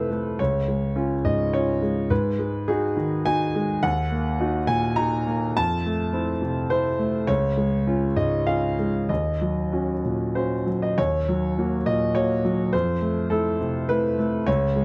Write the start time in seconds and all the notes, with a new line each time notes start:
Already playing: F2 C3 A3 E4 A4 B4 C5
0.11 A3
0.39 C#2 C#5
0.68 G#3
0.96 C#4 F4
1.25 G#2 D#5
1.53 C#4 F4 C#5
1.82 G#3
2.10 G#2 B4
2.39 G#3
2.68 D#4 F#4 G#4
2.97 D#3
3.26 D#4 F#4 G#5
3.55 G#3
3.83 D#2 F#5
4.12 A#3
4.40 D#4 F#4
4.67 A#2 G#5
4.96 D#4 F#4 A#5
5.27 A#3
5.57 F2 A5
5.86 A3
6.13 C4 E4
6.42 C3
6.70 C4 E4 C5
6.99 A3
7.27 C#2 C#5
7.57 G#3
7.87 C#4 F4
8.16 G#2 D#5
8.47 C#4 F4 F5
8.79 G#3
9.09 D#2 D#5
9.41 F#3
9.72 C#4 F#4
10.05 A#2
10.35 C#4 F#4 C5
10.66 F#3
10.82 D#5
10.98 D#2 C#5
11.29 F#3
11.58 A#3 F#4
11.86 A#2 D#5
12.15 A#3 F#4 C#5
12.45 F#3
12.73 F2 C5
13.01 A3
13.30 A3 E4 A4
13.61 C3
13.89 A3 E4 B4
14.19 A3
14.46 C#2 C#5
14.76 G#3